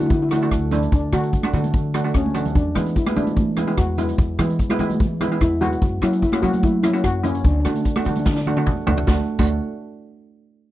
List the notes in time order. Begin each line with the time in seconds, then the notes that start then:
Already playing: D3 A3 D4 F#4
0.01 high conga
0.06 E4, closed hi-hat
0.10 E4, kick, high conga
0.22 E4
0.29 A3 D4 E4 F#4, cross-stick, closed hi-hat, low conga
0.36 E4
0.42 A3 D4 F#4, closed hi-hat
0.51 D2, kick, cross-stick, closed hi-hat
0.71 A3 D4 E4, closed hi-hat, low conga
0.83 closed hi-hat
0.92 D2 D4, kick, closed hi-hat
1.13 D3 A3 D4 F#4, cross-stick, closed hi-hat
1.23 closed hi-hat
1.33 kick, closed hi-hat
1.43 A3 D4 F#4, cross-stick, high conga
1.53 D3 A3 D4 F#4, closed hi-hat, low conga
1.64 closed hi-hat, high conga
1.74 kick, closed hi-hat
1.94 A3 D4 F#4, cross-stick, closed hi-hat, low conga
2.04 A3 D4 F#4, closed hi-hat
2.14 D2 C#4, kick, cross-stick, closed hi-hat, high conga
2.26 high conga
2.34 A3 D4 F#4, closed hi-hat, low conga
2.45 closed hi-hat, low conga
2.55 E2 D4, kick, closed hi-hat
2.75 E3 G#3 B3 E4, cross-stick, closed hi-hat, high conga
2.86 closed hi-hat
2.96 E4, kick, closed hi-hat
3.06 G#3 B3 E4, cross-stick, high conga
3.16 E3 G#3 B3 D4 E4, closed hi-hat, low conga
3.27 closed hi-hat, high conga
3.36 kick, closed hi-hat, high conga
3.57 G#3 B3 E4, cross-stick, closed hi-hat, low conga
3.67 G#3 B3 E4, closed hi-hat
3.78 E2 F#4, kick, cross-stick, closed hi-hat
3.98 G#3 B3 E4, closed hi-hat, low conga
4.09 closed hi-hat
4.18 E2, kick, closed hi-hat
4.39 E3 G#3 B3 E4, cross-stick, closed hi-hat, high conga
4.50 closed hi-hat
4.59 kick, closed hi-hat
4.70 G#3 B3 E4, cross-stick, high conga
4.79 E3 G#3 B3 E4, closed hi-hat, low conga
4.90 closed hi-hat, high conga
5.00 kick, closed hi-hat, high conga
5.21 G#3 B3 E4, cross-stick, closed hi-hat, low conga
5.32 G#3 B3 E4, closed hi-hat
5.41 E2 E4, kick, cross-stick, closed hi-hat
5.61 G#3 B3 E4 F#4, closed hi-hat, low conga
5.73 closed hi-hat
5.82 F#2, kick, closed hi-hat
6.02 F#3 A#3 C#4 E4 F#4, cross-stick, closed hi-hat
6.13 closed hi-hat
6.22 E4, kick, closed hi-hat
6.32 A#3 C#4 F#4, cross-stick, high conga
6.42 F#3 A#3 C#4 F#4, closed hi-hat, low conga
6.53 closed hi-hat, high conga
6.63 E4, kick, closed hi-hat, high conga
6.83 A#3 C#4 E4, cross-stick, closed hi-hat, low conga
6.93 A#3 C#4 F#4, closed hi-hat
7.04 F#2 F#4, kick, cross-stick, closed hi-hat
7.24 A#3 C#4 E4, closed hi-hat, low conga
7.35 closed hi-hat
7.44 D2 D4, kick, closed hi-hat
7.52 D4
7.60 D4
7.65 D3 A3 D4 F#4, cross-stick, closed hi-hat, high conga
7.74 D4, closed hi-hat
7.82 D4, kick, closed hi-hat
7.89 D4
7.96 A3 D4 F#4, cross-stick, high conga
8.04 D3 A3 D4 F#4, closed hi-hat, low conga
8.13 D4, closed hi-hat, high conga
8.19 D4
8.26 D4, kick, snare, high conga
8.33 D4, snare
8.41 D4
8.47 A3 D4 F#4, low conga
8.57 A3 D4 F#4, high tom
8.67 E2, kick, mid tom
8.87 D2 A3 D4 F#4, floor tom, high conga, low conga
8.98 floor tom
9.07 D2 A3 D4 F#4, kick, snare, high conga
9.39 D2 A3 D4 F#4, kick, crash, high conga